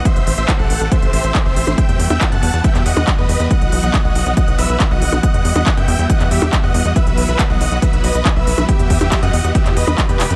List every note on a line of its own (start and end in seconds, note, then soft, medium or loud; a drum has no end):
0.05 0.33 C5 medium
0.05 0.33 E5 loud
0.05 kick loud
0.05 closed hi-hat medium
0.16 0.24 A1 medium
0.16 0.24 E3 medium
0.16 0.24 A3 medium
0.16 0.24 C4 medium
0.16 0.24 G4 medium
0.16 closed hi-hat soft
0.27 0.35 A1 loud
0.27 0.42 E3 medium
0.27 0.42 A3 medium
0.27 0.42 C4 medium
0.27 0.42 G4 medium
0.27 open hi-hat loud
0.38 0.46 A1 medium
0.38 0.56 C5 medium
0.38 0.56 E5 medium
0.38 closed hi-hat medium
0.48 kick loud
0.48 clap loud
0.48 closed hi-hat medium
0.59 0.67 B1 medium
0.59 0.74 E3 medium
0.59 0.74 A3 medium
0.59 0.74 C4 medium
0.59 0.74 G4 medium
0.59 0.87 A4 medium
0.59 0.87 F#5 loud
0.70 0.78 A1 loud
0.70 open hi-hat loud
0.81 0.89 A1 medium
0.81 0.96 E3 medium
0.81 0.96 A3 medium
0.81 0.96 C4 medium
0.81 0.96 G4 medium
0.81 closed hi-hat medium
0.92 1.10 C5 medium
0.92 1.10 E5 medium
0.92 kick loud
0.92 closed hi-hat medium
1.02 1.11 A1 medium
1.02 1.17 E3 medium
1.02 1.17 A3 medium
1.02 1.17 C4 medium
1.02 1.17 G4 medium
1.02 closed hi-hat soft
1.13 1.21 A1 loud
1.13 1.41 C5 medium
1.13 1.41 E5 loud
1.13 open hi-hat loud
1.24 1.32 A1 medium
1.24 closed hi-hat medium
1.35 kick loud
1.35 clap loud
1.35 closed hi-hat medium
1.45 1.54 A1 medium
1.45 1.61 E3 medium
1.45 1.60 A3 medium
1.45 1.61 C4 medium
1.45 1.61 G4 medium
1.45 1.73 C5 medium
1.45 1.73 E5 loud
1.56 1.65 A1 loud
1.56 open hi-hat loud
1.67 1.75 A1 medium
1.67 1.75 E3 medium
1.67 1.75 A3 medium
1.67 1.75 C4 medium
1.67 1.75 G4 medium
1.67 closed hi-hat medium
1.67 percussion blips medium
1.78 2.06 E5 medium
1.78 2.06 G5 loud
1.78 kick loud
1.78 closed hi-hat medium
1.89 1.97 E2 medium
1.89 1.96 E3 medium
1.89 1.96 G3 medium
1.89 1.96 B3 medium
1.89 1.96 F#4 medium
1.89 closed hi-hat soft
1.99 2.08 E2 loud
1.99 2.15 E3 medium
1.99 2.15 G3 medium
1.99 2.14 B3 medium
1.99 2.14 F#4 medium
1.99 open hi-hat loud
2.10 2.18 E2 medium
2.10 2.29 E5 medium
2.10 2.29 G5 medium
2.10 closed hi-hat medium
2.10 percussion blips medium
2.21 kick loud
2.21 clap loud
2.21 closed hi-hat medium
2.32 2.40 F#2 medium
2.32 2.47 E3 medium
2.32 2.47 G3 medium
2.32 2.47 B3 medium
2.32 2.47 F#4 medium
2.32 2.59 F#5 medium
2.32 2.59 A5 loud
2.32 closed hi-hat soft
2.43 2.51 E2 loud
2.43 open hi-hat loud
2.53 2.62 E2 medium
2.53 2.69 E3 medium
2.53 2.68 G3 medium
2.53 2.69 B3 medium
2.53 2.69 F#4 loud
2.53 closed hi-hat medium
2.64 2.83 E5 medium
2.64 2.83 G5 medium
2.64 kick loud
2.64 closed hi-hat medium
2.75 2.83 E2 medium
2.75 2.90 E3 medium
2.75 2.90 G3 medium
2.75 2.90 B3 medium
2.75 2.90 F#4 medium
2.75 clap soft
2.75 closed hi-hat soft
2.86 2.94 E2 loud
2.86 3.13 D#5 medium
2.86 3.13 F#5 loud
2.86 open hi-hat loud
2.97 3.05 E2 medium
2.97 closed hi-hat medium
2.97 percussion blips medium
3.07 kick loud
3.07 clap loud
3.07 closed hi-hat medium
3.18 3.26 E2 medium
3.18 3.33 E3 medium
3.18 3.33 G3 medium
3.18 3.33 B3 medium
3.18 3.33 F#4 medium
3.18 3.46 B4 medium
3.18 3.46 D#5 loud
3.29 3.37 E2 loud
3.29 open hi-hat loud
3.40 3.48 E2 medium
3.40 3.47 E3 medium
3.40 3.47 G3 medium
3.40 3.47 B3 medium
3.40 3.47 F#4 medium
3.40 closed hi-hat medium
3.51 3.78 D#5 medium
3.51 3.78 F#5 loud
3.51 kick loud
3.51 closed hi-hat medium
3.61 3.70 B1 medium
3.61 3.69 E3 medium
3.61 3.69 F#3 medium
3.61 3.69 B3 medium
3.61 3.69 F#4 medium
3.61 closed hi-hat soft
3.72 3.80 B1 loud
3.72 3.87 E3 medium
3.72 3.87 F#3 medium
3.72 3.87 B3 medium
3.72 3.87 F#4 medium
3.72 open hi-hat loud
3.83 3.91 B1 medium
3.83 4.01 D#5 medium
3.83 4.01 F#5 medium
3.83 closed hi-hat medium
3.94 kick loud
3.94 clap loud
3.94 closed hi-hat medium
4.04 4.13 C2 medium
4.04 4.20 E3 medium
4.04 4.20 F#3 medium
4.04 4.20 B3 medium
4.04 4.20 F#4 medium
4.04 4.32 D#5 medium
4.04 4.32 F#5 loud
4.15 4.24 B1 loud
4.15 open hi-hat loud
4.26 4.34 B1 loud
4.26 4.41 E3 medium
4.26 4.41 F#3 medium
4.26 4.41 B3 medium
4.26 4.41 F#4 medium
4.26 closed hi-hat medium
4.37 4.55 D#5 medium
4.37 4.55 F#5 medium
4.37 kick loud
4.37 closed hi-hat medium
4.48 4.56 B1 medium
4.48 4.63 E3 medium
4.48 4.63 F#3 medium
4.48 4.63 B3 medium
4.48 4.63 F#4 medium
4.48 closed hi-hat soft
4.58 4.67 B1 loud
4.58 4.86 B4 medium
4.58 4.86 E5 loud
4.58 open hi-hat loud
4.69 4.78 B1 medium
4.69 closed hi-hat medium
4.80 kick loud
4.80 clap loud
4.80 closed hi-hat medium
4.91 4.99 B1 medium
4.91 5.06 E3 medium
4.91 5.06 F#3 medium
4.91 5.06 B3 medium
4.91 5.06 F#4 medium
4.91 5.19 D#5 medium
4.91 5.19 F#5 loud
5.02 5.10 B1 loud
5.02 open hi-hat loud
5.12 5.21 B1 medium
5.12 5.20 E3 medium
5.12 5.20 F#3 medium
5.12 5.20 B3 medium
5.12 5.20 F#4 medium
5.12 closed hi-hat medium
5.12 percussion blips medium
5.23 5.51 D#5 medium
5.23 5.51 F#5 loud
5.23 kick loud
5.23 closed hi-hat medium
5.34 5.42 E2 medium
5.34 5.42 E3 medium
5.34 5.42 G3 medium
5.34 5.42 B3 medium
5.34 5.42 F#4 medium
5.34 closed hi-hat soft
5.45 5.53 E2 loud
5.45 5.60 E3 medium
5.45 5.60 G3 medium
5.45 5.60 B3 medium
5.45 5.60 F#4 medium
5.45 open hi-hat loud
5.55 5.64 E2 medium
5.55 5.74 D#5 medium
5.55 5.74 F#5 medium
5.55 closed hi-hat medium
5.55 percussion blips medium
5.66 kick loud
5.66 clap loud
5.66 closed hi-hat medium
5.77 5.85 F#2 medium
5.77 5.92 E3 medium
5.77 5.92 G3 medium
5.77 5.92 B3 medium
5.77 5.92 F#4 medium
5.77 6.05 E5 medium
5.77 6.05 G5 medium
5.77 closed hi-hat soft
5.88 5.96 E2 loud
5.88 open hi-hat loud
5.99 6.07 E2 medium
5.99 6.14 E3 medium
5.99 6.14 G3 medium
5.99 6.14 B3 medium
5.99 6.14 F#4 medium
5.99 closed hi-hat medium
6.10 6.28 D#5 medium
6.10 6.28 F#5 medium
6.10 kick loud
6.10 closed hi-hat medium
6.20 6.29 E2 medium
6.20 6.35 E3 medium
6.20 6.35 G3 medium
6.20 6.35 B3 medium
6.20 6.35 F#4 medium
6.20 clap soft
6.20 closed hi-hat soft
6.31 6.39 E2 loud
6.31 6.59 G4 medium
6.31 6.59 E5 loud
6.31 open hi-hat loud
6.42 6.50 E2 medium
6.42 closed hi-hat medium
6.42 percussion blips medium
6.53 kick loud
6.53 clap loud
6.53 closed hi-hat medium
6.63 6.72 E2 medium
6.63 6.79 E3 loud
6.63 6.79 G3 medium
6.63 6.79 B3 medium
6.63 6.79 F#4 medium
6.63 6.91 D#5 medium
6.63 6.91 F#5 loud
6.74 6.83 E2 loud
6.74 open hi-hat loud
6.85 6.93 E2 medium
6.85 6.93 E3 medium
6.85 6.93 G3 medium
6.85 6.93 B3 medium
6.85 6.93 F#4 medium
6.85 closed hi-hat medium
6.96 7.24 B4 medium
6.96 7.24 E5 loud
6.96 kick loud
6.96 closed hi-hat medium
7.07 7.15 B1 medium
7.07 7.14 E3 medium
7.07 7.14 F#3 medium
7.07 7.14 B3 medium
7.07 7.14 F#4 medium
7.07 closed hi-hat soft
7.17 7.26 B1 loud
7.17 7.33 E3 medium
7.17 7.33 F#3 medium
7.17 7.33 B3 medium
7.17 7.33 F#4 medium
7.17 open hi-hat loud
7.28 7.37 B1 medium
7.28 7.47 B4 medium
7.28 7.47 E5 medium
7.28 closed hi-hat medium
7.39 kick loud
7.39 clap loud
7.39 closed hi-hat medium
7.50 7.58 C2 medium
7.50 7.65 E3 medium
7.50 7.65 F#3 medium
7.50 7.65 B3 medium
7.50 7.65 F#4 medium
7.50 7.77 D#5 medium
7.50 7.77 F#5 loud
7.61 7.69 B1 loud
7.61 open hi-hat loud
7.71 7.80 B1 loud
7.71 7.87 E3 medium
7.71 7.87 F#3 medium
7.71 7.87 B3 medium
7.71 7.87 F#4 medium
7.71 closed hi-hat medium
7.82 8.01 B4 medium
7.82 8.01 E5 medium
7.82 kick loud
7.82 closed hi-hat medium
7.93 8.01 B1 medium
7.93 8.08 E3 medium
7.93 8.08 F#3 medium
7.93 8.08 B3 medium
7.93 8.08 F#4 medium
7.93 closed hi-hat soft
8.04 8.12 B1 loud
8.04 8.31 B4 medium
8.04 8.31 D#5 loud
8.04 open hi-hat loud
8.15 8.23 B1 medium
8.15 closed hi-hat medium
8.25 kick loud
8.25 clap loud
8.25 closed hi-hat medium
8.36 8.44 B1 medium
8.36 8.51 E3 medium
8.36 8.51 F#3 medium
8.36 8.51 B3 medium
8.36 8.51 F#4 medium
8.36 8.64 B4 medium
8.36 8.64 E5 loud
8.47 8.55 B1 loud
8.47 open hi-hat loud
8.58 8.66 B1 medium
8.58 8.65 E3 medium
8.58 8.65 F#3 medium
8.58 8.65 B3 medium
8.58 8.65 F#4 medium
8.58 closed hi-hat medium
8.58 percussion blips medium
8.68 8.96 G4 medium
8.68 8.96 E5 loud
8.68 kick loud
8.68 closed hi-hat medium
8.79 8.88 E2 medium
8.79 8.87 E3 medium
8.79 8.87 G3 medium
8.79 8.87 B3 medium
8.79 8.87 F#4 medium
8.79 closed hi-hat soft
8.90 8.98 E2 loud
8.90 9.05 E3 medium
8.90 9.05 G3 medium
8.90 9.05 B3 medium
8.90 9.05 F#4 medium
8.90 kick medium
8.90 open hi-hat loud
9.01 9.09 E2 medium
9.01 9.19 G4 medium
9.01 9.19 E5 medium
9.01 closed hi-hat medium
9.01 percussion blips medium
9.12 kick loud
9.12 clap loud
9.12 closed hi-hat medium
9.22 9.31 F#2 medium
9.22 9.38 E3 medium
9.22 9.38 G3 medium
9.22 9.37 B3 medium
9.22 9.38 F#4 medium
9.22 9.50 D#5 medium
9.22 9.50 F#5 loud
9.22 closed hi-hat soft
9.33 9.42 E2 loud
9.33 open hi-hat loud
9.44 9.52 E2 medium
9.44 9.59 E3 medium
9.44 9.59 G3 medium
9.44 9.59 B3 medium
9.44 9.59 F#4 medium
9.44 closed hi-hat medium
9.55 9.73 G4 medium
9.55 9.73 E5 medium
9.55 kick loud
9.55 closed hi-hat medium
9.66 9.74 E2 medium
9.66 9.81 E3 medium
9.66 9.81 G3 medium
9.66 9.81 B3 medium
9.66 9.81 F#4 medium
9.66 clap soft
9.66 closed hi-hat soft
9.76 9.85 E2 loud
9.76 10.04 B4 medium
9.76 10.04 D#5 loud
9.76 open hi-hat loud
9.87 9.95 E2 medium
9.87 closed hi-hat medium
9.87 percussion blips medium
9.98 kick loud
9.98 clap loud
9.98 closed hi-hat medium
10.09 10.17 E2 medium
10.09 10.24 E3 medium
10.09 10.24 G3 medium
10.09 10.24 B3 medium
10.09 10.24 F#4 medium
10.09 10.36 G4 medium
10.09 10.36 B4 loud
10.09 closed hi-hat soft
10.20 10.28 E1 loud
10.20 clap loud
10.20 open hi-hat loud
10.30 10.36 F#2 medium
10.30 10.36 E3 medium
10.30 10.36 G3 medium
10.30 10.36 B3 medium
10.30 10.36 F#4 medium
10.30 closed hi-hat medium